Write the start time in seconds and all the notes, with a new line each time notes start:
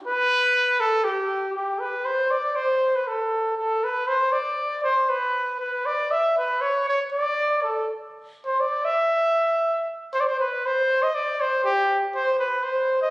0.08 B4
0.80 A4
1.04 G4
1.53 G4
1.80 B4
2.05 C5
2.31 D5
2.56 C5
2.96 B4
3.07 A4
3.57 A4
3.84 B4
4.08 C5
4.32 D5
4.83 C5
5.09 B4
5.60 B4
5.86 D5
6.11 E5
6.38 B4
6.61 C#5
6.89 C#5
7.12 D5
7.63 A4
8.46 C5
8.60 D5
8.85 E5
10.14 C5
10.20 D5
10.27 C5
10.40 B4
10.66 C5
11.03 D#5
11.15 D5
11.41 C5
11.64 G4
12.15 C5
12.40 B4
12.63 C5
13.02 D#5